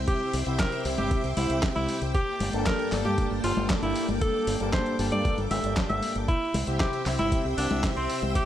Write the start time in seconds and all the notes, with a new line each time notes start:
Already playing: C3 C4 E4 G4 C5 E5 G5
0.08 G4 D6, kick, closed hi-hat
0.33 C2, open hi-hat
0.46 C2 C3 C4 E4 G4 E5, closed hi-hat
0.59 A#4, kick, snare, clap, closed hi-hat
0.72 closed hi-hat
0.85 C2 C3 C4 E4 G4 E5, open hi-hat
0.98 G1 G4, closed hi-hat, high conga
1.11 kick, closed hi-hat
1.24 C2, closed hi-hat
1.37 C2 C3 C4 E4 G4 E5, open hi-hat, high conga
1.50 C2, closed hi-hat
1.63 kick, snare, clap, closed hi-hat
1.76 C2 E4, closed hi-hat, high conga
1.89 open hi-hat
2.02 C2, closed hi-hat
2.14 A#3 G4 A5 D6, kick, closed hi-hat
2.40 G1, open hi-hat, high conga
2.53 G1 G2 G3 A#3 D4 A4, closed hi-hat
2.66 A#4, kick, snare, clap, closed hi-hat
2.79 closed hi-hat
2.92 G1 G2 G3 A#3 D4 A4, snare, clap, open hi-hat
3.05 G2 G4, closed hi-hat, high conga
3.18 kick, closed hi-hat
3.31 G1
3.44 G1 G2 G3 A#3 D4 F4 A4, open hi-hat
3.57 G1, closed hi-hat, high conga
3.70 kick, snare, clap, closed hi-hat
3.82 G1 E4, closed hi-hat
3.96 open hi-hat
4.08 G1, closed hi-hat, high conga
4.21 A4, kick, closed hi-hat
4.47 G1, open hi-hat
4.60 G1 G2 G3 A#3 D4 A4, closed hi-hat
4.73 C5, kick, snare, clap, closed hi-hat
4.86 closed hi-hat
4.99 G1 G2 G3 A#3 D4 A4, open hi-hat
5.12 G2 D5, closed hi-hat, high conga
5.25 kick, closed hi-hat
5.38 G1, closed hi-hat
5.51 G1 G2 G3 A#3 D4 A4 E5, open hi-hat, high conga
5.64 G1, closed hi-hat
5.77 kick, snare, clap, closed hi-hat
5.89 G1 E5, closed hi-hat, high conga
6.03 open hi-hat
6.16 G1, closed hi-hat
6.28 E4 C5 E5 G5 E6, kick, closed hi-hat
6.54 C2, open hi-hat, high conga
6.67 C2 C3 C4 E4 G4 E5, closed hi-hat
6.80 G4, kick, snare, clap, closed hi-hat
6.93 closed hi-hat
7.06 C2 C3 C4 E4 G4 E5, snare, clap, open hi-hat
7.19 G1 E4, closed hi-hat, high conga
7.32 kick, closed hi-hat
7.45 C2
7.58 C2 C3 C4 D4 E4 G4 E5, open hi-hat
7.71 C2, closed hi-hat, high conga
7.84 kick, snare, clap, closed hi-hat
7.96 C2 C4, closed hi-hat
8.10 open hi-hat
8.22 C2, closed hi-hat, high conga
8.35 G4, kick, closed hi-hat